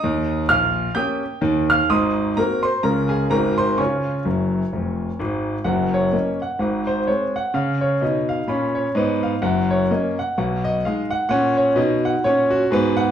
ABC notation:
X:1
M:4/4
L:1/8
Q:"Swing" 1/4=128
K:Db
V:1 name="Grand piano"
[ebe']2 [ff']2 [=ge'=g']2 z [ff'] | [ec'e']2 [Bb] [cc'] [Bb] [Aa] [Bb] [cc'] | [dad']6 z2 | [K:F#] f c d f f ^B c f |
e c d e b c d e | f c d f f d e f | f c d f c F G f |]
V:2 name="Grand piano" clef=bass
[E,,E,]2 [B,,,B,,]2 [B,D=G]2 [E,,E,]2 | [A,,,A,,]2 [B,CG]2 [D,,D,A,DF]2 [A,,,A,,A,CG]2 | [D,F]2 [G,,,G,,]2 [F,,,F,,]2 [A,,,A,,]2 | [K:F#] [F,,,F,,]2 [A,C]2 [G,,,G,,]2 [G,^B,]2 |
C,2 [B,,D]2 [A,,C]2 [G,,B,]2 | [F,,,F,,]2 [A,C]2 [B,,,B,,]2 [G,D]2 | [A,,C]2 [B,,D]2 [A,,C]2 [G,,B,]2 |]